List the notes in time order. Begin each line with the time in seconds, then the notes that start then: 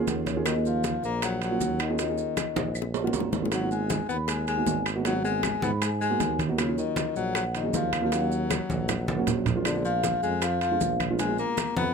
Already playing: A#3
0.00 C#4 F4 G#4
0.07 D#2 F#5, high bongo, low bongo, high conga, high timbale, maracas
0.26 C#5, high bongo, high conga, high timbale, maracas
0.36 A#3 C#4 F4 G#4
0.45 D#3 A#3 C#4 F4 F#4 D#5, high bongo, high timbale, claves, maracas
0.55 A#3 C#4 F4 G#4
0.65 F3 F5, high bongo, high conga, maracas
0.84 high bongo, high conga, high timbale, maracas
1.03 A#1 A#3 A#5, high bongo, high conga, maracas
1.22 F#3 F#5, high bongo, high conga, high timbale, claves, maracas
1.42 F#3 F#5, high conga, high timbale, maracas
1.51 A#3 C#4 F4 F#4
1.60 D#2, high bongo, low bongo, high conga, maracas
1.79 D#3 D#5, high bongo, high timbale, claves, maracas
1.89 A#3 C#4 F4 G#4
1.99 D#3 A#3 C#4 F4 F#4 D#5, high bongo, high conga, high timbale, maracas
2.08 A#3 C#4 F4 G#4
2.18 high bongo, high conga, maracas
2.37 high bongo, high conga, high timbale, claves, maracas
2.56 A#1, high bongo, high conga, high timbale, maracas
2.75 high conga, claves, maracas
2.82 high bongo
2.94 D#5, high conga, low timbale, maracas
3.03 A#3 C#4 F4 F#4
3.07 low bongo
3.13 G#1 A#5, high conga, low timbale, maracas
3.20 low bongo
3.33 low bongo, high conga, low timbale, maracas
3.42 A#3 C#4 F4 G#4, low bongo
3.51 F#3 A#3 B3 D#4 F#4 F#5, high bongo, high conga, high timbale, claves, maracas
3.61 A#3 B3 D#4 F4
3.71 G#3 G#5, high bongo, high conga, maracas
3.90 high bongo, high conga, high timbale, maracas
4.09 D#2 B3 B5, high bongo, high conga, maracas
4.28 G#3 G#5, high bongo, high conga, high timbale, claves, maracas
4.47 G#3 G#5, high conga, high timbale, maracas
4.57 A#3 B3 D#4 F#4
4.66 G#1, high bongo, low bongo, high conga, low timbale, maracas
4.86 high bongo, high timbale, claves, maracas
4.95 A#3 B3 D#4 F#4
5.05 F#3 A#3 B3 D#4 F4 F#5, high bongo, high conga, high timbale, maracas
5.14 A#3 B3 D#4 G#4
5.24 G#3 G#5, high bongo, high conga, maracas
5.43 high bongo, high conga, high timbale, claves, maracas
5.62 G#2 B3 B5, high bongo, high conga, maracas
5.81 G#3 G#5, high bongo, high conga, high timbale, claves, maracas
6.01 G#3 G#5, high conga, maracas
6.10 A#3 B3 D#4 F#4
6.20 D#2, high bongo, low bongo, high conga, high timbale, maracas
6.39 high bongo, high conga, high timbale, maracas
6.48 A#3 B3 D#4 F#4
6.58 C#3 F#3 A#3 C#4 F4 C#5, high bongo, high conga, high timbale, claves, maracas
6.67 F#3 A#3 C#4 F4
6.78 D#3 D#5, high bongo, high conga, maracas
6.96 high bongo, high conga, high timbale, maracas
7.16 A#1 F#3 F#5, high bongo, high conga, maracas
7.35 F#3 F#5, high bongo, high conga, high timbale, claves, maracas
7.54 D#3 D#5, high conga, high timbale, maracas
7.63 F#3 A#3 C#4 G#4
7.73 D#2 F3 F5, high bongo, low bongo, high conga, low timbale, maracas
7.93 high bongo, high conga, high timbale, claves, maracas
8.01 F3 F#3 A#3 C#4 F4
8.06 F5
8.11 F#3 A#3 C#4 F4 F#5, high bongo, high conga, high timbale, maracas
8.21 F#3 A#3 C#4 D#4
8.31 high bongo, high conga, maracas
8.51 high bongo, high conga, high timbale, claves, maracas
8.69 A#1, high bongo, high conga, maracas
8.89 high bongo, low conga, high timbale, claves, maracas
9.08 high conga, maracas
9.17 F#3 A#3 C#4 F#4
9.26 A#1, high bongo, low bongo, low conga, high timbale, low timbale, maracas
9.46 high bongo, low conga, high timbale, maracas
9.55 F#3 A#3 C#4 F4
9.65 D3 G#3 B3 D4 F4 D5, high bongo, high timbale, claves, maracas
9.75 G#3 B3 D4 F4
9.85 F3 F5, high bongo, high conga, maracas
10.04 high bongo, high conga, high timbale, maracas
10.22 F2 G#3 G#5, high bongo, high conga, maracas
10.42 F3 F5, high bongo, high conga, high timbale, claves, maracas
10.61 F3 F5, high conga, high timbale, maracas
10.71 G#3 B3 D4 F4
10.80 A#1, high bongo, low bongo, high conga, maracas
11.00 high bongo, high conga, high timbale, claves, maracas
11.10 G#3 B3 D4 F4
11.18 G#3 B3 D4 F4 G#5, high bongo, high conga, high timbale, maracas
11.28 B2 G#3 D4 F4
11.38 A#3 A#5, high bongo, high conga, maracas
11.57 high bongo, high conga, high timbale, claves, maracas
11.76 F2 B3 B5, high bongo, high conga, maracas